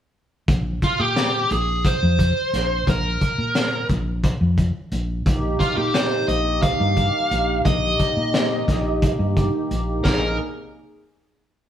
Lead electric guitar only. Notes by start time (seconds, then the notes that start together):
0.84 F4
1.00 G4
1.52 G#4
1.85 C5
2.90 A#4
5.60 F4
5.77 G4
5.94 C5
6.28 D#5
6.62 F5
7.65 D#5
10.04 A#4